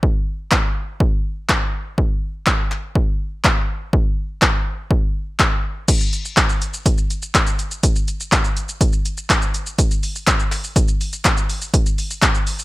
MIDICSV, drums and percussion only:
0, 0, Header, 1, 2, 480
1, 0, Start_track
1, 0, Tempo, 487805
1, 29, Time_signature, 4, 2, 24, 8
1, 12442, End_track
2, 0, Start_track
2, 0, Title_t, "Drums"
2, 29, Note_on_c, 9, 36, 113
2, 127, Note_off_c, 9, 36, 0
2, 505, Note_on_c, 9, 39, 110
2, 508, Note_off_c, 9, 39, 0
2, 508, Note_on_c, 9, 36, 105
2, 508, Note_on_c, 9, 39, 89
2, 607, Note_off_c, 9, 36, 0
2, 607, Note_off_c, 9, 39, 0
2, 987, Note_on_c, 9, 36, 114
2, 1085, Note_off_c, 9, 36, 0
2, 1469, Note_on_c, 9, 36, 98
2, 1469, Note_on_c, 9, 39, 114
2, 1568, Note_off_c, 9, 36, 0
2, 1568, Note_off_c, 9, 39, 0
2, 1948, Note_on_c, 9, 36, 104
2, 2046, Note_off_c, 9, 36, 0
2, 2425, Note_on_c, 9, 39, 109
2, 2428, Note_on_c, 9, 36, 105
2, 2431, Note_off_c, 9, 39, 0
2, 2431, Note_on_c, 9, 39, 84
2, 2526, Note_off_c, 9, 36, 0
2, 2529, Note_off_c, 9, 39, 0
2, 2672, Note_on_c, 9, 39, 76
2, 2770, Note_off_c, 9, 39, 0
2, 2907, Note_on_c, 9, 36, 111
2, 3006, Note_off_c, 9, 36, 0
2, 3389, Note_on_c, 9, 39, 113
2, 3390, Note_off_c, 9, 39, 0
2, 3390, Note_on_c, 9, 36, 98
2, 3390, Note_on_c, 9, 39, 83
2, 3488, Note_off_c, 9, 36, 0
2, 3489, Note_off_c, 9, 39, 0
2, 3869, Note_on_c, 9, 36, 110
2, 3967, Note_off_c, 9, 36, 0
2, 4347, Note_on_c, 9, 39, 106
2, 4349, Note_off_c, 9, 39, 0
2, 4349, Note_on_c, 9, 36, 105
2, 4349, Note_on_c, 9, 39, 85
2, 4447, Note_off_c, 9, 36, 0
2, 4448, Note_off_c, 9, 39, 0
2, 4827, Note_on_c, 9, 36, 112
2, 4926, Note_off_c, 9, 36, 0
2, 5309, Note_on_c, 9, 39, 106
2, 5310, Note_on_c, 9, 36, 99
2, 5407, Note_off_c, 9, 39, 0
2, 5408, Note_off_c, 9, 36, 0
2, 5789, Note_on_c, 9, 36, 113
2, 5789, Note_on_c, 9, 42, 78
2, 5789, Note_on_c, 9, 49, 90
2, 5789, Note_on_c, 9, 82, 81
2, 5887, Note_off_c, 9, 36, 0
2, 5888, Note_off_c, 9, 42, 0
2, 5888, Note_off_c, 9, 49, 0
2, 5888, Note_off_c, 9, 82, 0
2, 5911, Note_on_c, 9, 82, 58
2, 6010, Note_off_c, 9, 82, 0
2, 6031, Note_on_c, 9, 42, 50
2, 6031, Note_on_c, 9, 82, 50
2, 6129, Note_off_c, 9, 42, 0
2, 6129, Note_off_c, 9, 82, 0
2, 6152, Note_on_c, 9, 82, 68
2, 6250, Note_off_c, 9, 82, 0
2, 6266, Note_on_c, 9, 39, 108
2, 6269, Note_on_c, 9, 36, 107
2, 6270, Note_on_c, 9, 42, 75
2, 6270, Note_on_c, 9, 82, 73
2, 6364, Note_off_c, 9, 39, 0
2, 6367, Note_off_c, 9, 36, 0
2, 6368, Note_off_c, 9, 42, 0
2, 6368, Note_off_c, 9, 82, 0
2, 6390, Note_on_c, 9, 82, 49
2, 6488, Note_off_c, 9, 82, 0
2, 6511, Note_on_c, 9, 42, 52
2, 6511, Note_on_c, 9, 82, 51
2, 6609, Note_off_c, 9, 42, 0
2, 6609, Note_off_c, 9, 82, 0
2, 6629, Note_on_c, 9, 82, 77
2, 6727, Note_off_c, 9, 82, 0
2, 6747, Note_on_c, 9, 36, 115
2, 6750, Note_on_c, 9, 42, 90
2, 6750, Note_on_c, 9, 82, 86
2, 6846, Note_off_c, 9, 36, 0
2, 6848, Note_off_c, 9, 42, 0
2, 6848, Note_off_c, 9, 82, 0
2, 6866, Note_on_c, 9, 82, 52
2, 6965, Note_off_c, 9, 82, 0
2, 6990, Note_on_c, 9, 42, 49
2, 6990, Note_on_c, 9, 82, 46
2, 7089, Note_off_c, 9, 42, 0
2, 7089, Note_off_c, 9, 82, 0
2, 7109, Note_on_c, 9, 82, 80
2, 7207, Note_off_c, 9, 82, 0
2, 7229, Note_on_c, 9, 36, 99
2, 7229, Note_on_c, 9, 39, 112
2, 7231, Note_on_c, 9, 42, 82
2, 7231, Note_on_c, 9, 82, 81
2, 7328, Note_off_c, 9, 36, 0
2, 7328, Note_off_c, 9, 39, 0
2, 7329, Note_off_c, 9, 42, 0
2, 7329, Note_off_c, 9, 82, 0
2, 7347, Note_on_c, 9, 82, 60
2, 7446, Note_off_c, 9, 82, 0
2, 7469, Note_on_c, 9, 42, 52
2, 7469, Note_on_c, 9, 82, 54
2, 7568, Note_off_c, 9, 42, 0
2, 7568, Note_off_c, 9, 82, 0
2, 7589, Note_on_c, 9, 82, 75
2, 7687, Note_off_c, 9, 82, 0
2, 7708, Note_on_c, 9, 36, 109
2, 7708, Note_on_c, 9, 42, 80
2, 7708, Note_on_c, 9, 82, 82
2, 7807, Note_off_c, 9, 36, 0
2, 7807, Note_off_c, 9, 42, 0
2, 7807, Note_off_c, 9, 82, 0
2, 7831, Note_on_c, 9, 82, 56
2, 7929, Note_off_c, 9, 82, 0
2, 7949, Note_on_c, 9, 42, 51
2, 7949, Note_on_c, 9, 82, 51
2, 8048, Note_off_c, 9, 42, 0
2, 8048, Note_off_c, 9, 82, 0
2, 8072, Note_on_c, 9, 82, 70
2, 8171, Note_off_c, 9, 82, 0
2, 8186, Note_on_c, 9, 39, 109
2, 8189, Note_on_c, 9, 36, 104
2, 8191, Note_on_c, 9, 42, 76
2, 8191, Note_on_c, 9, 82, 72
2, 8285, Note_off_c, 9, 39, 0
2, 8287, Note_off_c, 9, 36, 0
2, 8289, Note_off_c, 9, 42, 0
2, 8289, Note_off_c, 9, 82, 0
2, 8309, Note_on_c, 9, 82, 47
2, 8408, Note_off_c, 9, 82, 0
2, 8429, Note_on_c, 9, 42, 53
2, 8429, Note_on_c, 9, 82, 51
2, 8527, Note_off_c, 9, 42, 0
2, 8527, Note_off_c, 9, 82, 0
2, 8548, Note_on_c, 9, 82, 75
2, 8646, Note_off_c, 9, 82, 0
2, 8667, Note_on_c, 9, 36, 114
2, 8669, Note_on_c, 9, 42, 93
2, 8669, Note_on_c, 9, 82, 90
2, 8765, Note_off_c, 9, 36, 0
2, 8768, Note_off_c, 9, 42, 0
2, 8768, Note_off_c, 9, 82, 0
2, 8784, Note_on_c, 9, 82, 51
2, 8883, Note_off_c, 9, 82, 0
2, 8909, Note_on_c, 9, 42, 47
2, 8909, Note_on_c, 9, 82, 48
2, 9008, Note_off_c, 9, 42, 0
2, 9008, Note_off_c, 9, 82, 0
2, 9027, Note_on_c, 9, 82, 77
2, 9126, Note_off_c, 9, 82, 0
2, 9149, Note_on_c, 9, 36, 99
2, 9149, Note_on_c, 9, 39, 112
2, 9150, Note_on_c, 9, 42, 82
2, 9150, Note_on_c, 9, 82, 82
2, 9248, Note_off_c, 9, 36, 0
2, 9248, Note_off_c, 9, 39, 0
2, 9249, Note_off_c, 9, 42, 0
2, 9249, Note_off_c, 9, 82, 0
2, 9268, Note_on_c, 9, 82, 58
2, 9367, Note_off_c, 9, 82, 0
2, 9390, Note_on_c, 9, 42, 52
2, 9390, Note_on_c, 9, 82, 53
2, 9489, Note_off_c, 9, 42, 0
2, 9489, Note_off_c, 9, 82, 0
2, 9510, Note_on_c, 9, 82, 75
2, 9609, Note_off_c, 9, 82, 0
2, 9629, Note_on_c, 9, 36, 111
2, 9630, Note_on_c, 9, 42, 83
2, 9630, Note_on_c, 9, 82, 84
2, 9727, Note_off_c, 9, 36, 0
2, 9728, Note_off_c, 9, 42, 0
2, 9728, Note_off_c, 9, 82, 0
2, 9752, Note_on_c, 9, 82, 59
2, 9850, Note_off_c, 9, 82, 0
2, 9871, Note_on_c, 9, 46, 72
2, 9871, Note_on_c, 9, 82, 52
2, 9969, Note_off_c, 9, 46, 0
2, 9969, Note_off_c, 9, 82, 0
2, 9993, Note_on_c, 9, 82, 69
2, 10092, Note_off_c, 9, 82, 0
2, 10108, Note_on_c, 9, 39, 114
2, 10109, Note_on_c, 9, 36, 110
2, 10112, Note_on_c, 9, 42, 77
2, 10112, Note_on_c, 9, 82, 78
2, 10206, Note_off_c, 9, 39, 0
2, 10208, Note_off_c, 9, 36, 0
2, 10211, Note_off_c, 9, 42, 0
2, 10211, Note_off_c, 9, 82, 0
2, 10230, Note_on_c, 9, 82, 48
2, 10328, Note_off_c, 9, 82, 0
2, 10351, Note_on_c, 9, 39, 76
2, 10352, Note_on_c, 9, 46, 71
2, 10352, Note_on_c, 9, 82, 52
2, 10449, Note_off_c, 9, 39, 0
2, 10450, Note_off_c, 9, 46, 0
2, 10450, Note_off_c, 9, 82, 0
2, 10470, Note_on_c, 9, 82, 75
2, 10568, Note_off_c, 9, 82, 0
2, 10587, Note_on_c, 9, 36, 121
2, 10590, Note_on_c, 9, 42, 92
2, 10590, Note_on_c, 9, 82, 94
2, 10686, Note_off_c, 9, 36, 0
2, 10689, Note_off_c, 9, 42, 0
2, 10689, Note_off_c, 9, 82, 0
2, 10706, Note_on_c, 9, 82, 54
2, 10805, Note_off_c, 9, 82, 0
2, 10832, Note_on_c, 9, 46, 68
2, 10832, Note_on_c, 9, 82, 50
2, 10931, Note_off_c, 9, 46, 0
2, 10931, Note_off_c, 9, 82, 0
2, 10949, Note_on_c, 9, 82, 75
2, 11048, Note_off_c, 9, 82, 0
2, 11066, Note_on_c, 9, 39, 88
2, 11070, Note_on_c, 9, 36, 106
2, 11071, Note_off_c, 9, 39, 0
2, 11071, Note_on_c, 9, 39, 112
2, 11072, Note_on_c, 9, 42, 85
2, 11072, Note_on_c, 9, 82, 79
2, 11168, Note_off_c, 9, 36, 0
2, 11169, Note_off_c, 9, 39, 0
2, 11170, Note_off_c, 9, 42, 0
2, 11170, Note_off_c, 9, 82, 0
2, 11191, Note_on_c, 9, 82, 59
2, 11289, Note_off_c, 9, 82, 0
2, 11311, Note_on_c, 9, 46, 72
2, 11311, Note_on_c, 9, 82, 51
2, 11409, Note_off_c, 9, 46, 0
2, 11409, Note_off_c, 9, 82, 0
2, 11429, Note_on_c, 9, 82, 75
2, 11527, Note_off_c, 9, 82, 0
2, 11549, Note_on_c, 9, 36, 111
2, 11550, Note_on_c, 9, 42, 80
2, 11550, Note_on_c, 9, 82, 85
2, 11647, Note_off_c, 9, 36, 0
2, 11649, Note_off_c, 9, 42, 0
2, 11649, Note_off_c, 9, 82, 0
2, 11672, Note_on_c, 9, 82, 59
2, 11770, Note_off_c, 9, 82, 0
2, 11791, Note_on_c, 9, 46, 72
2, 11791, Note_on_c, 9, 82, 53
2, 11889, Note_off_c, 9, 46, 0
2, 11889, Note_off_c, 9, 82, 0
2, 11911, Note_on_c, 9, 82, 73
2, 12010, Note_off_c, 9, 82, 0
2, 12027, Note_on_c, 9, 39, 113
2, 12028, Note_off_c, 9, 39, 0
2, 12028, Note_on_c, 9, 36, 107
2, 12028, Note_on_c, 9, 39, 91
2, 12031, Note_on_c, 9, 42, 75
2, 12031, Note_on_c, 9, 82, 76
2, 12126, Note_off_c, 9, 36, 0
2, 12127, Note_off_c, 9, 39, 0
2, 12129, Note_off_c, 9, 42, 0
2, 12129, Note_off_c, 9, 82, 0
2, 12149, Note_on_c, 9, 82, 47
2, 12248, Note_off_c, 9, 82, 0
2, 12269, Note_on_c, 9, 46, 77
2, 12269, Note_on_c, 9, 82, 52
2, 12367, Note_off_c, 9, 46, 0
2, 12367, Note_off_c, 9, 82, 0
2, 12389, Note_on_c, 9, 82, 78
2, 12442, Note_off_c, 9, 82, 0
2, 12442, End_track
0, 0, End_of_file